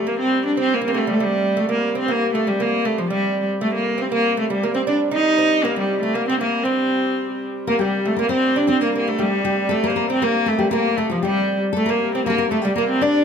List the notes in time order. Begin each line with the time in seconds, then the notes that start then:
Already playing: C3 G3
0.07 A#3
0.19 C4
0.45 D4
0.57 C4
0.74 A#3
0.81 A#3
0.86 A#3 C4
0.94 A3 A#3
0.98 A3
1.07 G3
1.14 A3
1.20 G3
1.57 A3
1.69 A#3
1.95 C4
2.08 A#3
2.34 A3
2.47 G3
2.60 A#3
2.85 A3
2.98 F3
3.10 G3
3.61 C3 G3 A3
3.74 A#3
3.98 C4
4.12 A#3
4.37 A3
4.50 G3
4.63 A#3
4.74 C4
4.87 D4
5.11 D#4
5.38 C4
5.64 A#3
5.76 G3
6.01 A3
6.14 A#3
6.28 C4
6.41 A#3
6.64 C4
7.67 C3 G3 A#3 A#4
7.79 G3 G4
8.05 A3
8.17 A#3 A#4
8.21 A#3
8.29 C4 C5
8.56 D4
8.67 C4 C5
8.81 A#3 A#4
8.95 A#3
9.07 A3
9.19 G3 G4
9.45 G3 G4
9.69 A3 A4
9.84 A#3 A#4
9.90 C5
9.96 A#4
10.10 C4
10.22 A#3 A#4
10.46 A3 A4
10.59 G3 G4
10.71 A#3 A#4
10.97 A3 A4
11.10 F3 F4
11.23 G3 G4
11.73 C3 G3 A3 A4
11.77 A3
11.86 A#3 A#4
11.90 A#3
12.14 C4
12.26 A#3 A4 A#4
12.38 A#4
12.51 A3 A4
12.62 G3 G4
12.76 A#3 A#4
12.89 C4
13.01 D4 D5